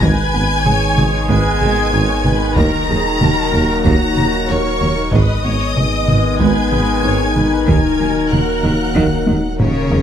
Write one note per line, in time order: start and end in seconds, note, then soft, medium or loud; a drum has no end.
0.01 0.14 G#1 loud
0.01 2.58 G#1 medium
0.01 0.11 G#1 loud
0.01 0.10 G#2 loud
0.01 2.53 D#3 medium
0.01 5.08 D#3 loud
0.01 2.52 G#3 loud
0.01 0.22 G#3 loud
0.01 2.53 B3 loud
0.01 5.08 D#4 medium
0.01 5.08 D#4 loud
0.01 2.57 B4 medium
0.01 0.65 B4 loud
0.01 5.08 D#5 medium
0.01 1.28 G#5 loud
0.01 1.29 G#6 loud
0.01 taiko loud
0.33 0.46 G#1 medium
0.33 0.42 G#1 medium
0.33 0.42 G#2 medium
0.33 0.53 B3 medium
0.65 0.78 G#1 medium
0.65 0.74 G#1 medium
0.65 0.74 G#2 medium
0.65 0.85 G#4 medium
0.65 1.29 C#5 loud
0.65 taiko mid medium
0.97 1.10 G#1 medium
0.97 1.06 G#1 medium
0.97 1.06 G#2 medium
0.97 1.17 G#4 medium
0.97 taiko mid medium
1.29 1.42 G#1 medium
1.29 1.37 G#1 medium
1.29 1.37 G#2 loud
1.29 1.49 G#3 loud
1.29 1.61 B4 loud
1.29 2.55 G#5 loud
1.29 2.55 G#6 loud
1.29 taiko medium
1.60 1.73 G#1 medium
1.60 1.70 G#1 medium
1.60 1.70 G#2 medium
1.60 1.81 G#4 medium
1.60 1.93 D#5 loud
1.60 taiko mid medium
1.93 2.06 G#1 medium
1.93 2.02 G#1 medium
1.93 2.01 G#2 medium
1.93 2.13 D#4 medium
1.93 2.25 C#5 medium
2.24 2.37 G#1 medium
2.24 2.33 G#1 medium
2.24 2.34 G#2 medium
2.24 2.44 D#4 medium
2.24 2.57 B4 loud
2.24 taiko mid medium
2.56 5.15 D#1 medium
2.56 2.70 D#2 loud
2.56 2.65 D#2 loud
2.56 2.66 D#2 loud
2.56 2.76 D#3 loud
2.56 5.08 F#3 medium
2.56 5.13 F#3 medium
2.56 5.08 A#3 loud
2.56 5.13 A#4 medium
2.56 2.89 A#4 loud
2.56 3.82 A#5 loud
2.56 3.82 A#6 loud
2.56 taiko loud
2.89 3.01 D#2 medium
2.89 2.97 D#2 medium
2.89 2.99 D#2 medium
2.89 3.08 F#3 medium
2.89 3.20 G#4 loud
3.20 3.33 D#2 medium
3.20 3.29 D#2 medium
3.20 3.30 D#2 medium
3.20 3.40 D#4 medium
3.20 3.85 A#4 loud
3.20 taiko mid medium
3.53 3.61 D#2 medium
3.53 3.66 D#2 medium
3.53 3.63 D#2 medium
3.53 3.73 D#4 medium
3.53 taiko mid medium
3.85 3.97 D#2 loud
3.85 3.93 D#2 loud
3.85 3.95 D#2 loud
3.85 4.04 D#3 loud
3.85 4.49 F#4 loud
3.85 4.47 A#5 loud
3.85 4.48 A#6 loud
3.85 taiko medium
4.16 4.24 D#2 medium
4.16 4.29 D#2 medium
4.16 4.26 D#2 medium
4.16 4.36 D#4 medium
4.16 taiko mid medium
4.48 4.61 D#2 medium
4.48 4.57 D#2 medium
4.48 4.58 D#2 medium
4.48 4.68 A#3 medium
4.48 5.12 A#4 loud
4.48 5.12 C#5 loud
4.48 5.13 C#6 loud
4.80 4.93 D#2 medium
4.80 4.88 D#2 medium
4.80 4.91 D#2 medium
4.80 5.00 A#3 medium
4.80 taiko mid medium
5.12 5.26 G#1 loud
5.12 7.70 G#1 medium
5.12 5.21 G#1 loud
5.12 5.23 G#2 loud
5.12 9.87 D#3 loud
5.12 10.02 D#3 medium
5.12 7.63 G#3 loud
5.12 5.32 G#3 loud
5.12 7.64 B3 loud
5.12 10.02 D#4 medium
5.12 9.43 D#4 loud
5.12 7.68 B4 medium
5.12 5.44 B4 loud
5.12 6.40 D#5 loud
5.12 10.02 D#5 medium
5.12 6.41 D#6 loud
5.12 taiko loud
5.44 5.57 G#1 medium
5.44 5.53 G#1 medium
5.44 5.54 G#2 medium
5.44 5.64 B3 medium
5.44 5.76 C#5 loud
5.76 5.89 G#1 medium
5.76 5.85 G#1 medium
5.76 5.86 G#2 medium
5.76 5.96 G#4 medium
5.76 6.40 D#5 loud
5.76 taiko mid medium
6.08 6.16 G#1 medium
6.08 6.21 G#1 medium
6.08 6.18 G#2 medium
6.08 6.28 G#4 medium
6.08 taiko mid medium
6.39 6.47 G#1 loud
6.39 6.53 G#1 loud
6.39 6.50 G#2 loud
6.39 6.59 G#3 loud
6.39 7.04 B4 loud
6.39 7.65 G#5 loud
6.39 7.66 G#6 loud
6.39 taiko medium
6.72 6.80 G#1 medium
6.72 6.85 G#1 medium
6.72 6.82 G#2 medium
6.72 6.92 G#4 medium
6.72 taiko mid medium
7.03 7.11 G#1 medium
7.03 7.17 G#1 medium
7.03 7.12 G#2 medium
7.03 7.24 D#4 medium
7.03 7.35 C#5 medium
7.35 7.48 G#1 medium
7.35 7.44 G#1 medium
7.35 7.44 G#2 medium
7.35 7.55 D#4 medium
7.35 7.67 B4 loud
7.35 taiko mid medium
7.67 10.02 D#1 medium
7.67 7.80 D#2 loud
7.67 7.76 D#2 medium
7.67 7.75 D#3 medium
7.67 7.87 D#3 loud
7.67 9.87 F#3 medium
7.67 9.43 A#3 loud
7.67 9.91 A#4 loud
7.67 10.02 A#4 medium
7.67 8.30 G#5 loud
7.67 8.30 G#6 loud
7.67 taiko loud
8.00 8.13 D#2 medium
8.00 8.08 D#2 medium
8.00 8.08 D#3 medium
8.00 8.19 F#3 medium
8.31 8.44 D#2 medium
8.31 8.40 D#2 medium
8.31 8.40 D#3 medium
8.31 8.51 D#4 medium
8.31 9.59 F#5 medium
8.31 9.60 F#6 medium
8.31 taiko mid medium
8.63 8.71 D#2 medium
8.63 8.76 D#2 medium
8.63 8.71 D#3 medium
8.63 8.83 D#4 medium
8.63 taiko mid medium
8.95 9.03 D#2 medium
8.95 9.08 D#2 medium
8.95 9.14 D#3 loud
8.95 9.04 D#3 loud
8.95 taiko medium
9.27 9.40 D#2 medium
9.27 9.36 D#2 medium
9.27 9.35 D#3 medium
9.27 9.46 D#4 medium
9.27 taiko high medium
9.58 9.67 D#2 medium
9.58 9.72 D#2 medium
9.58 10.02 C#3 medium
9.58 9.66 D#3 medium
9.58 9.78 A#3 medium
9.58 10.02 C#4 loud
9.58 10.02 A#4 medium
9.58 10.02 C#5 loud
9.58 taiko low-mid medium
9.90 9.99 D#2 medium
9.90 10.02 D#2 medium
9.90 9.98 D#3 medium
9.90 10.02 A#3 medium
9.90 taiko low loud